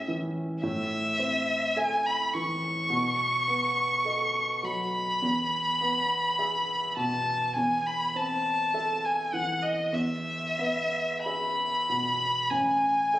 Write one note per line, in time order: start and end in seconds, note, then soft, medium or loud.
0.00 0.59 A2 medium
0.00 0.65 C#4 soft
0.00 0.65 G#4 soft
0.00 0.65 E5 soft
0.08 0.63 E3 soft
0.63 2.86 A2 medium
0.63 1.79 E5 medium
1.19 2.11 C4 soft
1.77 2.30 A4 soft
1.77 2.30 E5 soft
1.77 2.08 G#5 medium
2.06 2.35 B5 medium
2.34 2.91 E3 soft
2.34 4.66 C#6 medium
2.90 5.17 B2 medium
3.48 4.40 B3 soft
4.05 4.59 A4 soft
4.05 4.59 D#5 soft
4.63 5.21 F#3 soft
4.63 6.96 B5 medium
5.22 7.51 E2 soft
5.81 6.73 B3 soft
6.39 6.92 G#4 soft
6.39 6.92 E5 soft
6.97 7.55 B2 soft
6.97 7.55 A5 medium
7.56 9.89 E2 soft
7.56 7.88 G#5 medium
7.87 8.18 B5 medium
8.15 9.09 C4 soft
8.15 9.06 A5 medium
8.74 9.29 A4 soft
8.74 9.29 E5 soft
9.05 9.35 G#5 medium
9.33 9.93 E3 soft
9.33 9.64 F#5 medium
9.63 9.95 D#5 soft
9.92 12.46 E2 soft
9.92 11.25 E5 medium
10.59 11.64 B3 soft
11.25 11.85 G#4 soft
11.25 11.85 E5 soft
11.25 12.52 B5 medium
11.89 12.51 B2 soft
12.50 13.19 A1 soft
12.50 13.19 G#5 medium
13.14 13.19 A4 soft
13.14 13.19 E5 soft